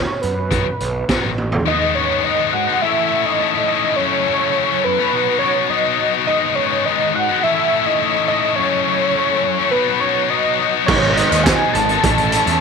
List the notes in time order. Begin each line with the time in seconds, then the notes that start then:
Already playing: C#5
0.21 F#2 B4, closed hi-hat
0.51 D#3 F#3 B3 D#4, kick, closed hi-hat
0.65 muted distorted electric guitar stroke
0.80 B1, closed hi-hat
1.09 D#3 F#3 B3 D#4, kick, snare, closed hi-hat
1.25 A1
1.38 high tom
1.52 floor tom
1.66 G#2 D#3 G#3 B3 D#4 G#4 B4 D#5 F#5
1.95 D#3 G#3 B3 D#4 C#5
2.09 G#3 B3 D#4
2.24 G#2 D#3 G#3 B3 D#4 D#5
2.38 G#3 B3 D#4
2.53 F#5, muted distorted electric guitar stroke
2.67 G#3 B3 D#4
2.82 A2 E3 A3 C#4 E4 A4 C#5 E5 A5
2.97 A3 C#4 E4
3.11 E3 A3 C#4 E4
3.25 D#5
3.40 A2 E3 A3 C#4 E4
3.55 A3 C#4 E4
3.68 E3 A3 C#4 D#5
3.72 E4
3.96 F#2 C#3 F#3 A4 C#5 F#5
4.00 A3 C#4
4.27 C#3 F#3 A3 C#4
4.40 F#3 A3 C#4
4.55 F#2 C#3 F#3 A3 C#4
4.69 F#3 A3 C#4
4.84 B4, muted distorted electric guitar stroke
4.99 F#3 A3 C#4
5.13 B2 F#3 B3 D#4 F#4 B4
5.28 F#3 B3 D#4
5.39 B2 C#5
5.44 F#3 B3 D#4
5.70 B2 F#3 B3 D#4 D#5
5.85 F#3 B3 D#4
5.99 B2 F#3 B3 D#4
6.27 G#2 D#3 G#3 B3 D#4 G#4 D#5
6.55 D#3 G#3 B3 C#5
6.60 D#4
6.71 G#3 B3 D#4
6.86 G#2 D#3 G#3 B3 D#4 D#5
7.00 G#3 B3 D#4
7.15 F#5, muted distorted electric guitar stroke
7.29 G#3 B3 D#4
7.43 A2 E3 A3 C#4 E4 A4 C#5 E5 A5
7.58 A3 C#4 E4
7.72 E3 A3 C#4 E4
7.86 D#5
8.01 A2 E3 A3 C#4 E4
8.15 A3 C#4 E4
8.28 E3 A3 C#4 D#5
8.32 E4
8.56 F#2 C#3 A4 C#5 F#5
8.60 F#3 A3 C#4
8.87 C#3 F#3 A3 C#4
9.01 F#3 A3 C#4
9.16 F#2 C#3 F#3 A3 C#4
9.30 F#3 A3 C#4
9.45 muted distorted electric guitar stroke
9.59 F#3 A3 C#4
9.71 B2 F#3 D#4 F#4 B4
9.75 B3 D#4
9.88 F#3 B3 D#4
10.00 B2 F#3 B3 C#5
10.05 D#4
10.30 B2 F#3 B3 D#4 D#5
10.45 F#3 B3 D#4
10.60 B2 F#3 B3 D#4
10.86 G#1 G#2 F#3 D#4 G#4 C#5, kick, tambourine, crash
10.90 D#3 G#3 B3 D#4
11.04 tambourine
11.17 D#3 G#3 B3 D#4 D#5, closed hi-hat
11.32 D#2 G#3 B3 D#4, muted clean electric guitar stroke, closed hi-hat, tambourine
11.44 G#2 D#3 G#5, kick, snare, closed hi-hat, tambourine
11.48 F#3 G#3 B3 D#4
11.61 G#3 B3 D#4
11.73 G#1 D#3 F#3 B3 A5, muted distorted electric guitar stroke, closed hi-hat
11.78 D#4
11.89 G#3 B3 D#4, muted clean electric guitar stroke, closed hi-hat
12.03 A1 A2 E3 A3 C#4 E4 A4 C#5 A5, kick, closed hi-hat
12.07 E4
12.18 A3 C#4 E4, closed hi-hat
12.32 E3 A3 C#4 E4, closed hi-hat, tambourine
12.47 E2 C#4 E4, closed hi-hat, tambourine
12.51 A3